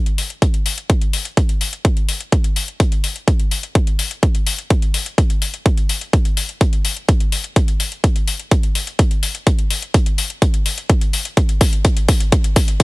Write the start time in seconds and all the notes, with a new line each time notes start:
0.06 closed hi-hat
0.18 open hi-hat
0.30 closed hi-hat
0.42 kick, closed hi-hat
0.54 closed hi-hat
0.66 open hi-hat
0.78 closed hi-hat
0.90 kick, closed hi-hat
1.01 closed hi-hat
1.13 open hi-hat
1.25 closed hi-hat
1.37 kick, closed hi-hat
1.49 closed hi-hat
1.61 open hi-hat
1.73 closed hi-hat
1.85 kick, closed hi-hat
1.97 closed hi-hat
2.09 open hi-hat
2.21 closed hi-hat
2.32 kick, closed hi-hat
2.44 closed hi-hat
2.56 open hi-hat
2.68 closed hi-hat
2.80 kick, closed hi-hat
2.92 closed hi-hat
3.04 open hi-hat
3.16 closed hi-hat
3.28 kick, closed hi-hat
3.40 closed hi-hat
3.51 open hi-hat
3.63 closed hi-hat
3.75 kick, closed hi-hat
3.87 closed hi-hat
3.99 open hi-hat
4.11 closed hi-hat
4.23 kick, closed hi-hat
4.35 closed hi-hat
4.47 open hi-hat
4.59 closed hi-hat
4.70 kick, closed hi-hat
4.82 closed hi-hat
4.94 open hi-hat
5.06 closed hi-hat
5.18 kick, closed hi-hat
5.30 closed hi-hat
5.42 open hi-hat
5.54 closed hi-hat
5.66 kick, closed hi-hat
5.77 closed hi-hat
5.89 open hi-hat
6.01 closed hi-hat
6.13 kick, closed hi-hat
6.25 closed hi-hat
6.37 open hi-hat
6.49 closed hi-hat
6.61 kick, closed hi-hat
6.73 closed hi-hat
6.85 open hi-hat
6.97 closed hi-hat
7.08 kick, closed hi-hat
7.20 closed hi-hat
7.32 open hi-hat
7.44 closed hi-hat
7.56 kick, closed hi-hat
7.68 closed hi-hat
7.80 open hi-hat
7.92 closed hi-hat
8.04 kick, closed hi-hat
8.16 closed hi-hat
8.28 open hi-hat
8.40 closed hi-hat
8.51 kick, closed hi-hat
8.63 closed hi-hat
8.75 open hi-hat
8.87 closed hi-hat
8.99 kick, closed hi-hat
9.11 closed hi-hat
9.23 open hi-hat
9.35 closed hi-hat
9.47 kick, closed hi-hat
9.59 closed hi-hat
9.71 open hi-hat
9.82 closed hi-hat
9.94 kick, closed hi-hat
10.06 closed hi-hat
10.18 open hi-hat
10.30 closed hi-hat
10.42 kick, closed hi-hat
10.54 closed hi-hat
10.66 open hi-hat
10.78 closed hi-hat
10.89 kick, closed hi-hat
11.01 closed hi-hat
11.13 open hi-hat
11.25 closed hi-hat
11.37 kick, closed hi-hat
11.49 closed hi-hat
11.61 kick, open hi-hat
11.73 closed hi-hat
11.85 kick, closed hi-hat
11.97 closed hi-hat
12.08 kick, open hi-hat
12.20 closed hi-hat
12.32 kick, closed hi-hat
12.44 closed hi-hat
12.56 kick, open hi-hat
12.68 closed hi-hat
12.80 closed hi-hat